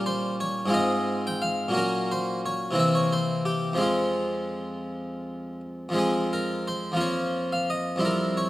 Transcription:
Already playing: A#2 G3 C#4 G4
0.06 C5
0.40 C#5
0.66 G#2 G#3 C4
0.70 F4 D#5
1.27 G5
1.42 F5
1.68 A#2 F#3 A#3
1.74 C#4 A#4
2.11 C5
2.46 C#5
2.71 C3 E3 A#3
2.75 C4
2.79 E5
2.95 C#5
3.13 C5
3.45 G4
3.73 F2 F3 G#3
3.78 C4 F4
5.89 F2 F3
5.93 G#3 C4
5.98 G#4
6.33 A#4
6.68 C5
6.92 F2 F3 A#3
6.97 F4 C#5
7.52 F5
7.70 D#5
7.96 F2 G3 C4
8.01 E4
8.05 A#4
8.37 C#5

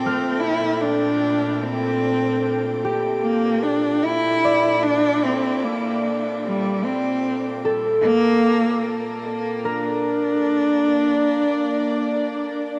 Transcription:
Already playing: A#2 C4 A4 G5 A5 D6
0.06 A3 F6
0.40 E4
0.81 D4
1.63 C4
2.85 G4
3.22 A#3
3.63 D4
4.04 E4
4.45 D5
4.84 D4
5.24 C4
5.64 A#3
6.44 G3
6.85 C4
7.65 A4
8.01 A#3
9.62 A#3 D4 A#4 D5

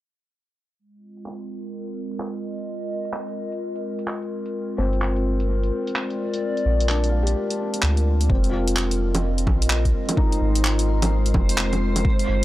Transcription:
0.79 G#3
0.95 C4 F4
1.17 closed hi-hat
1.26 clap
1.35 A#4
1.41 closed hi-hat
1.64 closed hi-hat
1.88 closed hi-hat
2.09 D#5, closed hi-hat
2.20 clap
2.35 closed hi-hat
2.58 closed hi-hat
3.05 closed hi-hat
3.13 clap
3.28 closed hi-hat
3.52 closed hi-hat
3.76 closed hi-hat
3.99 closed hi-hat
4.07 clap
4.22 closed hi-hat
4.46 closed hi-hat
4.78 G1 C4
4.93 closed hi-hat
5.02 clap
5.16 closed hi-hat
5.40 closed hi-hat
5.63 closed hi-hat
5.87 D5, closed hi-hat
5.96 clap
6.10 closed hi-hat
6.34 closed hi-hat
6.57 closed hi-hat
6.65 A#1
6.80 closed hi-hat
6.89 D4, clap
7.04 closed hi-hat
7.09 F4
7.23 G4
7.27 closed hi-hat
7.50 closed hi-hat
7.74 closed hi-hat
7.82 D2, clap
7.97 closed hi-hat
8.21 closed hi-hat
8.29 F1 C4 C5, kick
8.44 closed hi-hat
8.50 F4
8.68 closed hi-hat
8.72 D#5
8.76 clap
8.91 closed hi-hat
9.15 closed hi-hat, low bongo
9.38 closed hi-hat
9.47 A#1, kick, low bongo
9.62 closed hi-hat
9.70 clap
9.85 kick, closed hi-hat
10.09 closed hi-hat, low bongo
10.17 D#4, kick
10.32 closed hi-hat
10.41 G#1
10.55 closed hi-hat
10.64 clap
10.79 closed hi-hat
11.02 closed hi-hat, low bongo
11.26 closed hi-hat
11.34 kick, low bongo
11.49 closed hi-hat
11.58 clap
11.73 closed hi-hat, low bongo
11.96 closed hi-hat, low bongo
12.05 kick
12.19 closed hi-hat
12.28 G1

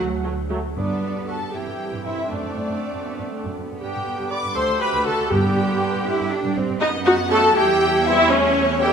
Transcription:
Already playing: D2 F#4
0.23 F#3 A3
0.50 F#3 A3
0.76 G2 D3 B3 D4 G4 D5
0.89 G2
1.02 G2
1.15 G2
1.27 F#4 A4 A5
1.41 G2
1.53 G2 E3 G3 C4 E4 G4 A4 G5
1.66 G2
1.92 G2
2.04 G2 C4 E4 E5
2.17 G2
2.28 F#2 D3 A3 D4 D5
2.43 F#2
2.55 F#2
2.68 F#2
2.93 F#2
3.06 F#2 B3
3.18 F#2
3.32 A3
3.43 F#2
3.56 F#2 B3
3.69 F#2
3.80 G2 B3 D4 G4 G5
3.94 G2
4.06 G2
4.18 G2
4.30 B4 D5 D6
4.44 G2
4.55 D2 A3 F#4 A4 C5 C6
4.68 D2
4.80 G4 B4 B5
4.94 D2
5.05 D2 F#4 A4 A5
5.18 D2
5.30 G2 D3 G3 B3 D4 G4 G5
5.43 G2
5.56 G2
5.68 G2
5.93 G2
6.06 G2 E4
6.19 G2
6.30 D4
6.43 G2
6.55 G2 C4
6.68 G2
6.80 F#2 B3 D#4 D#5
7.05 D#4 F#4 F#5
7.30 F#3 A3 B3 F#4 A4 A5
7.55 E2 G3 E4 G4 G5
8.06 E3 G3 B3 C4 E4 G4 E5
8.31 A3 C#4 C#5
8.81 E3 G3 A3 E4 G4 A4 G5

